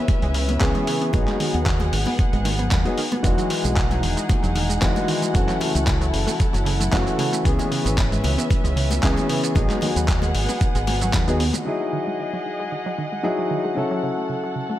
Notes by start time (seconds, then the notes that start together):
Already playing: E3 B3 C#4 G#4 B4 E5
0.08 C#3, muted fingered electric bass stroke, kick, closed hi-hat, muted conga
0.22 C#2 G#3, closed hi-hat
0.34 C#3, open hi-hat
0.49 B3, closed hi-hat, muted conga
0.60 C#2 E3 G#3 B3 C#4 G#4, kick, clap, closed hi-hat
0.74 G#3, closed hi-hat, muted conga, high conga
0.87 C#3, open hi-hat
1.01 B3, closed hi-hat
1.12 G#1 D#3 F#3 B3 D#4 G#4 F#5, kick, closed hi-hat, muted conga
1.28 G#3, clap, closed hi-hat
1.40 D#3, open hi-hat, muted conga, high conga
1.54 D#2 B3, closed hi-hat
1.66 D#3, kick, clap, closed hi-hat
1.80 G#3, closed hi-hat, muted conga, high conga
1.92 G#1 D#3, open hi-hat
2.06 B3, open hi-hat, muted conga, high conga
2.19 D#3, kick, closed hi-hat
2.33 G#1 G#3, closed hi-hat
2.45 D#3, open hi-hat, muted conga
2.59 B3, closed hi-hat, low conga
2.71 D#2 G#3, kick, clap, closed hi-hat, muted conga
2.85 F#3 G#3 B3 D#4 G#4, closed hi-hat
2.98 D#3, open hi-hat
3.12 B3, closed hi-hat, muted conga
3.23 E1 D#3 E3 G#3 D#4 F#4 G#4 F#5, kick, closed hi-hat, muted conga, shaker
3.38 F#3, closed hi-hat, shaker
3.50 D#3, open hi-hat
3.64 B1 G#3, closed hi-hat, muted conga, shaker
3.77 D#3, kick, clap, closed hi-hat, shaker
3.91 F#3, closed hi-hat, muted conga, shaker
4.03 E1 D#3, open hi-hat
4.17 G#3, closed hi-hat, shaker
4.29 D#3, muted fingered electric bass stroke, kick, closed hi-hat, muted conga, shaker
4.43 E1 F#3, closed hi-hat, shaker
4.55 D#3, open hi-hat, muted conga
4.69 G#3, closed hi-hat, shaker
4.81 E1 E3 F#3 G#3 D#4 F#4, kick, clap, closed hi-hat, shaker
4.95 F#3, closed hi-hat, muted conga, high conga, shaker
5.08 D#3, open hi-hat
5.22 G#3, closed hi-hat, muted conga, shaker
5.34 F#1 C#3 E3 A3 C#4 E4 F#4 A4, kick, closed hi-hat, shaker
5.48 F#3, clap, closed hi-hat, shaker
5.60 C#3, open hi-hat, muted conga, high conga
5.75 C#2 A3, closed hi-hat, shaker
5.87 C#3, kick, clap, closed hi-hat, muted conga, shaker
6.01 F#3, closed hi-hat, shaker
6.13 F#1 C#3, open hi-hat
6.27 A3, open hi-hat, muted conga, shaker
6.39 C#3, kick, closed hi-hat, shaker
6.53 F#1 F#3, closed hi-hat, muted conga, shaker
6.65 C#3, open hi-hat
6.80 A3, closed hi-hat, low conga, shaker
6.92 F#1 E3 F#3 A3 C#4 F#4, kick, clap, closed hi-hat, muted conga, shaker
7.06 F#3, closed hi-hat, shaker
7.18 C#3, open hi-hat, muted conga
7.33 A3, closed hi-hat, shaker
7.44 C#2 C#3 E3 B3 C#4 G#4 B4 E5, kick, closed hi-hat, shaker
7.59 G#3, closed hi-hat, muted conga, shaker
7.71 C#3, open hi-hat
7.85 G#1 B3, closed hi-hat, muted conga, shaker
7.97 C#3, kick, clap, closed hi-hat, shaker
8.12 G#3, closed hi-hat, shaker
8.24 C#2 C#3, open hi-hat, muted conga
8.38 B3, closed hi-hat, shaker
8.50 C#3, muted fingered electric bass stroke, kick, closed hi-hat, muted conga, shaker
8.64 C#2 G#3, closed hi-hat, shaker
8.76 C#3, open hi-hat
8.91 B3, closed hi-hat, muted conga, shaker
9.03 C#2 E3 G#3 B3 C#4 G#4, kick, clap, closed hi-hat, shaker
9.17 G#3, closed hi-hat, muted conga, high conga, shaker
9.29 C#3, open hi-hat
9.44 B3, closed hi-hat, shaker
9.55 G#1 D#3 F#3 B3 D#4 G#4 F#5, kick, closed hi-hat, muted conga, shaker
9.70 G#3, clap, closed hi-hat, shaker
9.81 D#3, open hi-hat, muted conga, high conga, low conga
9.96 D#2 B3, closed hi-hat, shaker
10.08 D#3, kick, clap, closed hi-hat, shaker
10.22 G#3, closed hi-hat, muted conga, shaker
10.35 G#1 D#3, open hi-hat
10.49 B3, open hi-hat, muted conga, shaker
10.61 D#3, kick, closed hi-hat, shaker
10.75 G#1 G#3, closed hi-hat, shaker
10.87 F#3, open hi-hat, muted conga
11.01 F#3, closed hi-hat, low conga, shaker
11.13 D#2 D#3, kick, clap, closed hi-hat, muted conga, shaker
11.27 F#3 B3 D#4 G#4, closed hi-hat, shaker
11.40 B3, open hi-hat
11.53 D#3, closed hi-hat, muted conga, shaker
11.65 D#3 F#3 D#4 E4 G#4 D#5 F#5
11.81 F#3
11.93 D#3
12.07 G#3
12.19 D#3
12.33 F#3
12.46 D#3
12.60 G#3
12.72 D#3
12.86 F#3
12.98 D#3
13.12 G#3
13.23 F#3 D#4 E4 G#4
13.39 F#3
13.51 D#3
13.65 G#3
13.75 C#3 F#3 C#4 E4 A4
13.91 F#3
14.03 C#3
14.17 A3
14.29 C#3
14.44 F#3
14.56 C#3
14.70 A3